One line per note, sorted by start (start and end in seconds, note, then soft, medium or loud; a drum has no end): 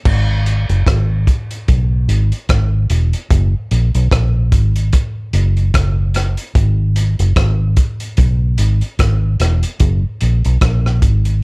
0.05 0.66 G#1 loud
0.05 kick loud
0.05 crash loud
0.46 closed hi-hat medium
0.69 0.86 F#1 medium
0.69 closed hi-hat medium
0.87 1.25 G#1 loud
0.87 kick loud
0.87 cross-stick loud
0.87 closed hi-hat medium
1.27 kick medium
1.27 closed hi-hat medium
1.51 closed hi-hat medium
1.68 2.07 B1 medium
1.68 kick loud
1.68 closed hi-hat medium
2.08 2.31 G#1 medium
2.08 closed hi-hat medium
2.32 closed hi-hat soft
2.49 2.88 G#1 medium
2.49 kick loud
2.49 cross-stick loud
2.49 closed hi-hat medium
2.90 3.12 E1 medium
2.90 closed hi-hat medium
3.13 closed hi-hat medium
3.30 3.53 F#1 loud
3.30 kick loud
3.30 closed hi-hat medium
3.71 3.93 A#1 medium
3.71 closed hi-hat medium
3.95 4.11 B1 medium
3.95 closed hi-hat medium
4.11 4.50 A#1 loud
4.11 kick loud
4.11 cross-stick loud
4.11 closed hi-hat medium
4.52 4.91 G#1 medium
4.52 kick medium
4.52 closed hi-hat medium
4.76 closed hi-hat medium
4.93 kick loud
4.93 closed hi-hat medium
5.33 5.72 F#1 medium
5.33 closed hi-hat medium
5.57 closed hi-hat soft
5.74 6.35 F#1 medium
5.74 kick loud
5.74 cross-stick loud
5.74 closed hi-hat medium
6.14 cross-stick medium
6.14 closed hi-hat medium
6.37 closed hi-hat medium
6.55 7.16 G#1 loud
6.55 kick loud
6.55 closed hi-hat medium
6.96 closed hi-hat medium
7.19 7.36 F#1 medium
7.19 closed hi-hat medium
7.36 7.75 G#1 loud
7.36 kick loud
7.36 cross-stick loud
7.36 closed hi-hat medium
7.77 kick medium
7.77 closed hi-hat medium
8.00 closed hi-hat medium
8.17 8.56 B1 medium
8.17 kick loud
8.17 closed hi-hat medium
8.58 8.81 G#1 medium
8.58 closed hi-hat medium
8.81 closed hi-hat soft
8.99 9.38 G#1 medium
8.99 kick loud
8.99 cross-stick loud
8.99 closed hi-hat medium
9.40 9.62 E1 medium
9.40 cross-stick medium
9.40 closed hi-hat medium
9.63 closed hi-hat medium
9.80 10.02 F#1 loud
9.80 kick loud
9.80 closed hi-hat medium
10.21 10.44 A#1 medium
10.21 closed hi-hat medium
10.45 10.61 B1 medium
10.45 closed hi-hat medium
10.61 11.00 A#1 loud
10.61 kick loud
10.61 cross-stick loud
10.61 closed hi-hat medium
10.86 cross-stick medium
11.02 11.41 G#1 medium
11.02 kick medium
11.02 closed hi-hat medium
11.25 closed hi-hat medium